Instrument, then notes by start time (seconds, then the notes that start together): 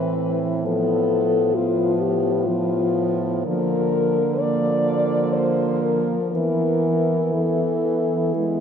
french horn
Already playing: A2 E3 C4 B4
0.64 F3 B3 A4
1.55 F3 B3 F4
2.00 G4
2.46 F3 B3 F4
3.44 D3 F3 A#3 A#4
4.39 F3 A#3 D5
5.33 C5
5.82 A#4
6.31 E3 B3 A#4
7.33 E3 B3 A4
8.34 G#3 B3 E4